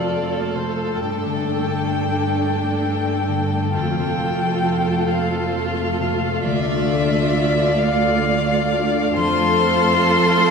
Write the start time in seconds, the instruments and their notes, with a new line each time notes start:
Already playing: cello section F2, harp F2 C3 C4 F4 C5 F5, viola section A3 F4, violin section A4, violin D5
0.08 harp A4
0.32 harp C4
0.55 harp C3, violin C5
0.79 harp C4
1.00 harp G2, cello section G2, viola section D4, violin G5
1.25 harp D3
1.47 harp A3
1.71 harp D4
1.93 harp A4
2.15 harp D4
2.38 harp D5
2.60 harp A4
2.83 harp D4
3.05 harp A3
3.28 harp D3
3.51 harp A3
3.73 cello section F2, harp F2, viola section A3 F4, violin section A4, violin G5
3.96 harp C3
4.18 harp A3
4.42 harp F4
4.64 harp A4
4.86 harp F4
5.09 harp C5, violin F5
5.31 harp A4
5.54 harp F4
5.77 harp A3
5.99 harp C3
6.21 harp A3
6.43 cello section D2, harp D3, violin section D5, violin E5
6.65 harp D4
6.88 harp A3
7.10 harp F4
7.33 harp A4
7.55 harp F4
7.78 violin F5, harp F5
8.02 harp A4
8.25 harp F4
8.48 harp A3
8.71 harp D4
8.94 harp A3
9.16 cello section F2, harp F3, viola section A3 F4, violin section A4 C5, violin C6
9.39 harp A3
9.62 harp F4
9.85 harp A4
10.07 harp F4
10.30 harp F5